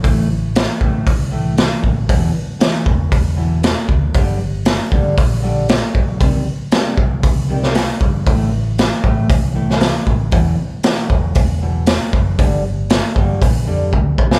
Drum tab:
HH |o---o---o---o---|o---o---o---o---|o---o---o---o---|o---o---o---o---|
SD |----o-------o---|----o-------o---|----o-------o---|----o------oo---|
BD |o-----o-o-----o-|o-----o-o-----o-|o-----o-o-----o-|o-----o-o-----o-|

HH |o---o---o---o---|o---o---o---o---|o---o---o-------|
SD |----o------oo---|----o-------o---|----o----------o|
BD |o-----o-o-----o-|o-----o-o-----o-|o-----o-o---o-o-|